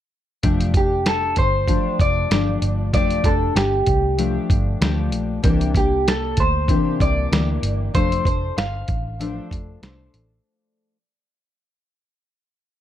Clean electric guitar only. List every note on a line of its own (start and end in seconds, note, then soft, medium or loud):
0.77 1.08 G4 medium
1.08 1.36 A4 medium
1.39 2.01 C5 loud
2.01 2.93 D5 loud
2.94 3.26 D5 loud
3.25 3.56 A4 medium
3.56 4.46 G4 medium
5.77 6.09 G4 medium
6.09 6.40 A4 medium
6.40 7.01 C5 medium
7.02 7.95 D5 medium
7.95 8.25 C5 loud
8.26 8.55 C5 medium
8.58 9.47 F5 medium